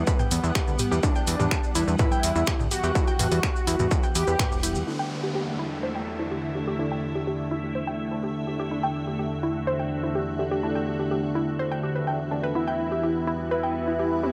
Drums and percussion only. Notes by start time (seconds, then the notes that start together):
0.07 kick, cabasa
0.19 mid tom, cabasa
0.31 open hi-hat, cabasa
0.44 cabasa
0.55 finger snap, kick, cabasa
0.68 cabasa
0.79 open hi-hat, mid tom, cabasa
0.92 cabasa
1.03 kick, cabasa
1.15 cabasa
1.27 open hi-hat, cabasa
1.40 mid tom, cabasa
1.51 finger snap, kick, cabasa
1.64 cabasa
1.75 open hi-hat, cabasa
1.88 cabasa
1.99 kick, mid tom, cabasa
2.12 cabasa
2.23 open hi-hat, cabasa
2.35 cabasa
2.46 finger snap, kick, cabasa
2.60 mid tom, cabasa
2.71 open hi-hat, cabasa
2.84 cabasa
2.95 kick, cabasa
3.07 cabasa
3.19 open hi-hat, mid tom, cabasa
3.32 open hi-hat, cabasa
3.43 finger snap, kick, cabasa
3.56 cabasa
3.67 open hi-hat, cabasa
3.79 mid tom, cabasa
3.91 kick, cabasa
4.03 cabasa
4.15 open hi-hat, cabasa
4.27 cabasa
4.39 finger snap, kick, mid tom, cabasa
4.52 cabasa
4.63 open hi-hat, cabasa
4.75 cabasa